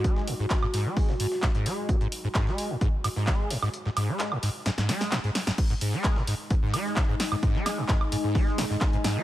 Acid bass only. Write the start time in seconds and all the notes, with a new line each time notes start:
0.04 G#3
0.28 G#2
0.39 G#2
0.63 G#2
0.74 G#2
0.86 G#3
1.09 G#2
1.20 G#2
1.43 G#2
1.55 G#2
1.66 G#3
1.89 G#2
2.01 G#2
2.24 G#2
2.35 G#2
2.47 G#3
2.70 G#2
2.81 G#2
3.04 G#2
3.16 G#2
3.27 G#3
3.50 G#2
3.62 G#2
3.86 G#2
3.97 G#2
4.09 G#3
4.32 G#2
4.43 G#2
4.66 G#2
4.78 G#2
4.89 G#3
5.12 G#2
5.24 G#2
5.47 G#2
5.70 G#2
5.81 G#2
5.93 G#3
6.16 G#2
6.27 G#2
6.50 G#2
6.63 G#2
6.74 G#3
6.97 G#2
7.09 G#2
7.32 G#2
7.43 G#2
7.55 G#3
7.78 G#2
7.89 G#2
8.12 G#2
8.24 G#2
8.35 G#3
8.58 G#2
8.70 G#2
8.93 G#2
9.04 G#2
9.16 G#3